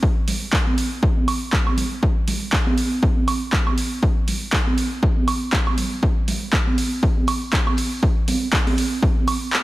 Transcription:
0.03 kick
0.28 open hi-hat, tambourine, low conga
0.41 tambourine
0.53 kick, clap
0.67 high conga
0.78 open hi-hat, tambourine
0.92 tambourine
1.03 kick
1.17 high conga
1.28 open hi-hat, high woodblock
1.43 tambourine
1.53 kick, clap
1.66 high conga, high woodblock
1.77 open hi-hat, tambourine, low conga
1.92 tambourine
2.03 kick
2.27 open hi-hat, tambourine, low conga
2.42 tambourine
2.53 kick, clap, tambourine
2.67 high conga
2.78 open hi-hat, tambourine
2.91 tambourine
3.03 kick
3.16 high conga
3.27 open hi-hat, tambourine, high woodblock
3.42 tambourine
3.52 kick, clap, tambourine
3.66 high conga, high woodblock
3.78 open hi-hat, tambourine
3.92 tambourine
4.03 kick
4.28 open hi-hat, tambourine, low conga
4.41 tambourine
4.52 kick, clap, tambourine
4.67 high conga
4.78 open hi-hat, tambourine
4.92 tambourine
5.03 kick
5.17 high conga
5.28 open hi-hat, tambourine, high woodblock
5.43 tambourine
5.53 kick, clap
5.67 high conga, high woodblock
5.78 open hi-hat, tambourine, low conga
5.91 tambourine
6.03 kick
6.27 open hi-hat, tambourine, low conga
6.43 tambourine
6.53 kick, clap
6.67 high conga
6.78 open hi-hat, tambourine
6.92 tambourine
7.03 kick
7.17 high conga
7.27 open hi-hat, tambourine, high woodblock
7.42 tambourine
7.53 kick, clap
7.66 high conga, high woodblock
7.77 open hi-hat, tambourine
7.92 tambourine
8.03 kick
8.28 open hi-hat, tambourine, high conga, low conga
8.42 tambourine
8.52 kick, clap, tambourine
8.67 open hi-hat, high conga
8.78 open hi-hat, tambourine
8.92 tambourine
9.03 kick
9.17 high conga
9.27 open hi-hat, tambourine, high woodblock
9.41 tambourine
9.53 clap

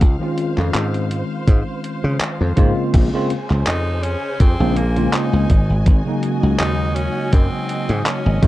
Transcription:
Already playing: C5 F5
0.01 C#2, kick, closed hi-hat
0.19 D#3 G#3 C4 C#4 F4
0.38 closed hi-hat
0.58 F2, clap
0.74 G#2, clap, closed hi-hat
0.94 closed hi-hat
1.11 closed hi-hat
1.47 G#2, kick, closed hi-hat
1.84 closed hi-hat
2.04 C#3
2.20 clap, closed hi-hat
2.41 F2
2.56 G#2 C#3 G#3 A#3 C4 F4, kick, closed hi-hat
2.94 A#1 C#3 C5 G#5, kick, closed hi-hat, crash
3.14 C#3 G#3 A#3 C4 F4
3.30 closed hi-hat
3.50 C#2, clap
3.67 F2 D#4, clap, closed hi-hat
4.03 C#4, closed hi-hat
4.40 F2 C4, kick, closed hi-hat
4.59 A#1 C#3 G#3 A#3 C4 F4
4.76 A#3, closed hi-hat
4.96 C#3 G#3 A#3 C4 F4, closed hi-hat
5.13 D#4, clap, closed hi-hat
5.33 C#2
5.50 G#1 F#4 D#5, kick, closed hi-hat
5.70 G#1
5.86 G#1, kick, closed hi-hat
6.05 C#3 F#3 G#3 A#3 D#4
6.23 closed hi-hat
6.43 C#2
6.59 D#2 D#4, clap, closed hi-hat
6.96 C#4, closed hi-hat
7.33 F#2 C4, kick, closed hi-hat
7.69 closed hi-hat
7.89 G#2, closed hi-hat
8.00 D#4
8.06 C#4, clap, closed hi-hat
8.26 G#1
8.42 D#2 C#3 F3 F#3 A#3 D#4 F5 F#5, kick, closed hi-hat

